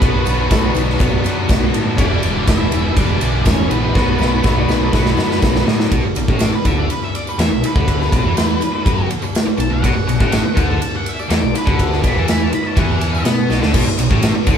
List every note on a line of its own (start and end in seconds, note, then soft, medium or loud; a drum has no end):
0.00 0.22 B1 medium
0.00 1.96 B2 medium
0.00 1.97 F#3 medium
0.00 0.70 B3 medium
0.00 1.94 B3 medium
0.00 1.98 B3 medium
0.00 1.97 D4 loud
0.00 1.94 F#4 medium
0.00 1.98 F#4 loud
0.00 0.70 B4 medium
0.00 1.94 D5 medium
0.00 kick loud
0.00 ride loud
0.00 tambourine soft
0.26 0.46 B1 loud
0.26 ride medium
0.26 tambourine medium
0.51 0.71 B1 loud
0.51 0.64 A4 medium
0.51 kick loud
0.51 snare loud
0.51 ride loud
0.51 tambourine loud
0.65 0.76 B4 medium
0.75 0.95 B1 medium
0.75 1.24 B4 loud
0.75 ride medium
0.75 tambourine medium
0.90 snare soft
0.99 1.20 B1 loud
0.99 1.96 B2 medium
0.99 1.97 F#3 medium
0.99 3.97 B3 medium
0.99 kick loud
0.99 ride loud
0.99 tambourine medium
1.24 1.45 F#2 medium
1.24 ride medium
1.24 tambourine medium
1.49 1.69 B1 medium
1.49 kick loud
1.49 snare loud
1.49 ride medium
1.49 tambourine loud
1.73 2.00 A2 medium
1.73 ride medium
1.73 tambourine soft
1.96 2.18 E1 loud
1.96 3.92 E2 loud
1.96 3.92 B2 loud
1.96 3.93 E3 loud
1.96 3.93 G3 loud
1.96 3.93 B3 medium
1.96 2.44 D4 loud
1.96 3.93 E4 loud
1.96 3.92 G4 medium
1.96 3.94 G4 loud
1.96 2.48 D5 loud
1.96 3.93 E5 medium
1.96 kick loud
1.96 ride loud
1.96 tambourine soft
2.23 2.43 E1 loud
2.23 ride medium
2.23 tambourine medium
2.46 2.68 E1 medium
2.46 2.92 E4 medium
2.46 2.98 E5 loud
2.46 kick loud
2.46 snare loud
2.46 ride loud
2.46 tambourine medium
2.72 2.92 E1 loud
2.72 ride medium
2.72 tambourine medium
2.95 3.17 E1 medium
2.95 3.93 E2 medium
2.95 3.94 B2 medium
2.95 3.95 E3 medium
2.95 3.42 D4 medium
2.95 3.45 D5 medium
2.95 kick loud
2.95 ride loud
2.95 tambourine medium
3.21 3.42 B1 medium
3.21 ride medium
3.21 tambourine medium
3.45 3.66 E1 loud
3.45 3.69 C#4 medium
3.45 3.69 C#5 medium
3.45 kick loud
3.45 snare loud
3.45 ride loud
3.45 tambourine loud
3.70 3.91 A#1 medium
3.70 5.63 B3 medium
3.70 5.62 B4 medium
3.70 ride medium
3.70 tambourine soft
3.93 4.15 B1 medium
3.93 5.89 B2 medium
3.93 5.89 F#3 medium
3.93 5.90 B3 loud
3.93 5.89 B3 medium
3.93 5.90 D4 loud
3.93 5.89 F#4 medium
3.93 5.90 F#4 loud
3.93 5.89 D5 medium
3.93 kick loud
3.93 snare medium
4.19 4.39 B1 loud
4.19 snare medium
4.19 tambourine medium
4.43 4.64 B1 loud
4.43 4.57 E5 medium
4.43 kick loud
4.43 snare medium
4.43 tambourine medium
4.59 4.70 D5 medium
4.68 4.88 B1 loud
4.68 4.81 B4 medium
4.68 snare medium
4.68 tambourine medium
4.85 4.94 A4 medium
4.93 5.13 B1 medium
4.93 5.89 B2 medium
4.93 5.90 F#3 medium
4.93 5.91 B3 medium
4.93 kick loud
4.93 snare medium
4.93 tambourine medium
4.97 5.07 F#4 medium
5.06 5.20 E4 medium
5.06 snare medium
5.17 5.38 F#2 medium
5.17 snare loud
5.17 tambourine medium
5.22 5.79 F#4 medium
5.31 snare medium
5.42 5.63 B1 medium
5.42 kick loud
5.42 snare loud
5.42 tambourine medium
5.56 snare loud
5.67 5.87 A2 medium
5.67 snare loud
5.67 tambourine soft
5.80 snare loud
5.91 6.03 B1 medium
5.91 6.03 B2 loud
5.91 9.79 B3 medium
5.91 9.79 F#4 medium
5.91 9.79 D5 medium
5.91 kick loud
5.91 ride loud
6.03 muted picked electric bass stroke soft
6.03 muted distorted electric guitar stroke medium
6.03 tambourine soft
6.15 6.27 B1 medium
6.15 6.29 B2 medium
6.15 ride medium
6.15 tambourine medium
6.28 6.51 A1 loud
6.28 6.52 A2 loud
6.28 kick loud
6.39 6.55 D5 medium
6.39 snare loud
6.39 ride loud
6.39 tambourine loud
6.53 6.66 B4 medium
6.53 muted picked electric bass stroke soft
6.53 muted distorted electric guitar stroke medium
6.65 6.88 D2 loud
6.65 6.89 D3 loud
6.65 6.78 E5 loud
6.65 kick loud
6.65 ride medium
6.65 tambourine medium
6.78 6.89 D5 medium
6.90 7.02 B4 medium
6.90 ride loud
6.90 tambourine soft
7.02 7.15 E5 medium
7.02 tambourine soft
7.15 7.29 D5 medium
7.15 ride medium
7.27 7.39 B4 medium
7.27 tambourine medium
7.38 7.50 E2 medium
7.38 7.50 E3 medium
7.38 7.63 E5 medium
7.38 snare loud
7.38 ride loud
7.38 tambourine loud
7.51 7.62 B1 medium
7.51 7.63 B2 medium
7.51 tambourine soft
7.63 9.07 B4 loud
7.63 muted picked electric bass stroke soft
7.63 muted distorted electric guitar stroke medium
7.63 ride medium
7.63 tambourine medium
7.76 8.09 D2 medium
7.76 8.12 D3 loud
7.76 kick loud
7.88 kick loud
7.88 ride loud
8.00 snare soft
8.00 tambourine soft
8.12 8.23 B1 loud
8.12 8.24 B2 loud
8.12 kick loud
8.12 ride medium
8.12 tambourine medium
8.24 8.58 E2 medium
8.24 8.61 E3 loud
8.37 snare loud
8.37 ride loud
8.37 tambourine medium
8.61 muted distorted electric guitar stroke medium
8.61 muted picked electric bass stroke soft
8.61 ride medium
8.61 tambourine medium
8.86 9.08 F#2 loud
8.86 9.09 F#3 loud
8.86 kick loud
8.86 ride loud
8.86 tambourine soft
8.98 tambourine soft
9.10 muted distorted electric guitar stroke soft
9.10 muted picked electric bass stroke soft
9.10 ride medium
9.22 muted distorted electric guitar stroke medium
9.22 muted picked electric bass stroke soft
9.22 tambourine medium
9.35 snare loud
9.35 ride loud
9.35 tambourine loud
9.46 muted distorted electric guitar stroke medium
9.46 muted picked electric bass stroke soft
9.46 tambourine soft
9.58 9.70 B1 medium
9.58 9.69 B2 medium
9.58 9.71 A5 loud
9.58 ride medium
9.58 tambourine medium
9.70 9.82 B1 medium
9.70 9.81 B2 medium
9.70 10.67 F#5 loud
9.82 9.95 B1 loud
9.82 9.93 B2 loud
9.82 13.39 B3 medium
9.82 13.70 F#4 medium
9.82 13.65 D5 medium
9.82 kick loud
9.82 ride loud
9.94 muted distorted electric guitar stroke medium
9.94 muted picked electric bass stroke soft
9.94 tambourine soft
10.07 10.19 B1 medium
10.07 10.20 B2 medium
10.07 ride medium
10.07 tambourine medium
10.20 10.43 A1 loud
10.20 10.44 A2 medium
10.20 kick loud
10.32 snare loud
10.32 ride loud
10.32 tambourine medium
10.44 muted distorted electric guitar stroke medium
10.44 muted picked electric bass stroke soft
10.56 10.79 D2 loud
10.56 10.80 D3 loud
10.56 kick loud
10.56 ride medium
10.56 tambourine medium
10.71 10.93 A5 medium
10.82 ride loud
10.95 11.09 F#5 medium
10.95 tambourine soft
11.06 11.19 E5 loud
11.06 ride medium
11.19 11.54 D5 medium
11.19 tambourine medium
11.30 11.42 E2 loud
11.30 11.42 E3 loud
11.30 snare loud
11.30 ride loud
11.30 tambourine medium
11.42 11.54 B1 medium
11.42 11.54 B2 medium
11.55 11.79 B4 medium
11.55 muted distorted electric guitar stroke medium
11.55 muted picked electric bass stroke soft
11.55 ride medium
11.55 tambourine medium
11.66 12.01 D2 medium
11.66 12.02 D3 loud
11.66 kick loud
11.79 kick loud
11.79 ride loud
11.79 tambourine soft
11.92 snare soft
11.92 tambourine soft
12.02 12.15 B1 loud
12.02 12.13 B2 loud
12.02 kick loud
12.02 ride medium
12.02 tambourine medium
12.07 12.18 B5 loud
12.14 12.50 E2 medium
12.14 12.50 E3 medium
12.18 12.29 A5 medium
12.28 12.43 B5 medium
12.28 snare loud
12.28 ride loud
12.28 tambourine medium
12.41 12.53 A5 loud
12.41 tambourine soft
12.52 12.67 B5 loud
12.52 muted distorted electric guitar stroke medium
12.52 muted picked electric bass stroke soft
12.52 ride medium
12.65 12.77 A5 loud
12.65 tambourine soft
12.76 13.22 E2 loud
12.76 13.24 E3 medium
12.76 13.25 F#5 loud
12.76 kick loud
12.76 ride loud
12.90 tambourine soft
13.01 ride medium
13.01 tambourine soft
13.15 tambourine medium
13.24 13.48 B2 loud
13.24 13.48 B3 loud
13.24 snare loud
13.24 ride loud
13.24 tambourine medium
13.38 13.63 B3 medium
13.38 tambourine soft
13.44 13.65 C4 medium
13.44 13.66 D4 medium
13.49 13.61 B1 medium
13.49 13.61 B2 loud
13.49 13.67 E4 medium
13.49 13.69 F4 medium
13.49 snare medium
13.49 tambourine medium
13.54 13.70 G4 medium
13.54 13.72 A4 medium
13.61 13.74 D2 medium
13.61 13.73 D3 loud
13.61 13.73 B4 medium
13.61 13.75 C5 medium
13.61 snare medium
13.66 13.74 D5 medium
13.66 13.77 E5 medium
13.71 13.86 B1 loud
13.71 13.86 B2 loud
13.71 14.58 F#4 medium
13.71 13.78 F5 medium
13.71 kick loud
13.71 crash loud
13.75 14.58 B3 medium
13.75 14.58 D5 medium
13.87 muted picked electric bass stroke soft
13.87 muted distorted electric guitar stroke medium
13.98 14.10 B1 medium
13.98 14.11 B2 medium
13.98 ride medium
13.98 tambourine medium
14.11 14.34 A1 medium
14.11 14.34 A2 loud
14.11 kick loud
14.23 snare loud
14.23 ride loud
14.23 tambourine loud
14.35 muted picked electric bass stroke soft
14.35 muted distorted electric guitar stroke medium
14.47 14.58 D2 loud
14.47 14.58 D3 loud
14.47 kick loud
14.47 ride medium
14.47 tambourine medium